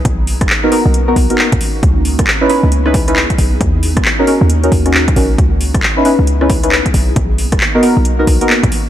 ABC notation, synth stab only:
X:1
M:4/4
L:1/16
Q:"Swing 16ths" 1/4=135
K:C#dor
V:1 name="Synth stab"
z4 z [B,DFA] [B,DFA] z2 [B,DFA] z [B,DFA] z4 | z4 z [CDEB] [CDEB] z2 [CDEB] z [CDEB] z4 | z4 z [CDFA] [CDFA] z2 [CDFA] z [CDFA] z2 [CDFA] z | z4 z [CDEB] [CDEB] z2 [CDEB] z [CDEB] z4 |
z4 z [B,DFA] [B,DFA] z2 [B,DFA] z [B,DFA] z4 |]